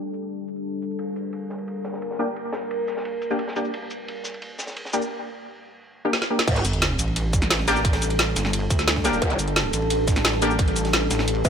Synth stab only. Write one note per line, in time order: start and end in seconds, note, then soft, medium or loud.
2.19 2.28 A#3 medium
2.19 2.28 D4 medium
2.19 2.28 G4 loud
3.30 3.39 A#3 medium
3.30 3.39 D4 medium
3.30 3.39 G4 medium
3.56 3.70 A#3 medium
3.56 3.70 D4 medium
3.56 3.70 G4 medium
4.93 5.02 A#3 medium
4.93 5.02 D4 medium
4.93 5.02 G4 loud
6.05 6.14 A#3 medium
6.05 6.14 D4 medium
6.05 6.14 G4 loud
6.30 6.45 A#3 medium
6.30 6.45 D4 medium
6.30 6.45 G4 medium
7.68 7.76 A#3 loud
7.68 7.76 D4 medium
7.68 7.76 G4 loud
9.05 10.40 A#3 medium
9.05 10.40 D4 medium
9.05 10.40 G4 medium
10.42 10.51 A#3 loud
10.42 10.51 D4 medium
10.42 10.51 G4 loud